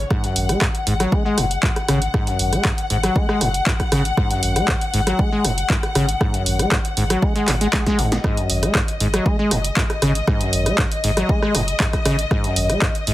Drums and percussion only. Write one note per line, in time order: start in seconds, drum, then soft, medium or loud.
0.10 kick loud
0.10 cross-stick medium
0.24 closed hi-hat soft
0.36 open hi-hat loud
0.49 cross-stick soft
0.49 closed hi-hat medium
0.61 kick loud
0.61 cross-stick medium
0.61 clap loud
0.75 closed hi-hat soft
0.87 open hi-hat medium
1.00 cross-stick medium
1.00 closed hi-hat medium
1.12 kick loud
1.38 cross-stick soft
1.38 open hi-hat medium
1.51 closed hi-hat medium
1.63 kick loud
1.63 clap loud
1.76 cross-stick medium
1.76 closed hi-hat soft
1.88 cross-stick medium
1.88 open hi-hat medium
2.02 closed hi-hat medium
2.14 kick loud
2.14 cross-stick medium
2.27 closed hi-hat soft
2.39 open hi-hat medium
2.53 cross-stick soft
2.53 closed hi-hat medium
2.65 kick loud
2.65 cross-stick medium
2.65 clap loud
2.78 closed hi-hat soft
2.90 open hi-hat medium
3.03 cross-stick medium
3.03 closed hi-hat medium
3.16 kick loud
3.29 cross-stick medium
3.41 cross-stick soft
3.41 open hi-hat medium
3.54 closed hi-hat medium
3.67 kick loud
3.67 clap loud
3.80 kick medium
3.80 cross-stick medium
3.80 closed hi-hat soft
3.92 cross-stick medium
3.92 open hi-hat medium
4.05 closed hi-hat medium
4.17 kick loud
4.17 cross-stick medium
4.31 closed hi-hat medium
4.43 open hi-hat medium
4.56 cross-stick soft
4.56 closed hi-hat medium
4.68 kick loud
4.68 cross-stick medium
4.68 clap loud
4.81 closed hi-hat medium
4.94 open hi-hat medium
5.07 cross-stick medium
5.07 closed hi-hat medium
5.19 kick loud
5.45 cross-stick soft
5.45 open hi-hat loud
5.58 closed hi-hat medium
5.70 kick loud
5.70 clap loud
5.83 cross-stick medium
5.83 closed hi-hat soft
5.95 cross-stick medium
5.95 open hi-hat medium
6.09 closed hi-hat medium
6.21 kick loud
6.21 cross-stick medium
6.34 closed hi-hat medium
6.46 open hi-hat loud
6.59 cross-stick soft
6.59 closed hi-hat medium
6.72 kick loud
6.72 cross-stick medium
6.72 clap loud
6.85 closed hi-hat medium
6.97 open hi-hat medium
7.10 cross-stick medium
7.10 closed hi-hat medium
7.22 kick loud
7.36 closed hi-hat soft
7.48 cross-stick soft
7.48 clap medium
7.48 open hi-hat loud
7.61 closed hi-hat medium
7.73 kick loud
7.73 snare medium
7.73 clap loud
7.86 kick medium
7.86 snare medium
7.86 closed hi-hat soft
7.99 open hi-hat medium
8.12 snare medium
8.12 closed hi-hat medium
8.24 kick loud
8.24 cross-stick medium
8.37 closed hi-hat medium
8.50 open hi-hat loud
8.63 cross-stick soft
8.63 closed hi-hat medium
8.75 kick loud
8.75 cross-stick medium
8.75 clap loud
8.88 closed hi-hat medium
9.00 open hi-hat medium
9.14 cross-stick medium
9.14 closed hi-hat medium
9.26 kick loud
9.51 cross-stick soft
9.51 open hi-hat loud
9.64 closed hi-hat medium
9.77 kick loud
9.77 clap loud
9.90 cross-stick medium
9.90 closed hi-hat soft
10.02 cross-stick medium
10.02 open hi-hat medium
10.15 closed hi-hat medium
10.27 kick loud
10.27 cross-stick medium
10.41 closed hi-hat medium
10.53 open hi-hat loud
10.66 cross-stick soft
10.66 closed hi-hat medium
10.78 kick loud
10.78 cross-stick medium
10.78 clap loud
10.92 closed hi-hat medium
11.04 open hi-hat medium
11.17 cross-stick medium
11.17 closed hi-hat medium
11.29 kick loud
11.42 cross-stick medium
11.55 cross-stick soft
11.55 open hi-hat loud
11.68 closed hi-hat medium
11.80 kick loud
11.80 clap loud
11.93 kick medium
11.93 cross-stick medium
11.93 closed hi-hat soft
12.05 cross-stick medium
12.05 open hi-hat medium
12.19 closed hi-hat medium
12.31 kick loud
12.31 cross-stick medium
12.44 closed hi-hat soft
12.56 open hi-hat loud
12.70 cross-stick soft
12.70 closed hi-hat medium
12.82 kick loud
12.82 cross-stick medium
12.82 clap loud
12.95 closed hi-hat soft
13.07 open hi-hat medium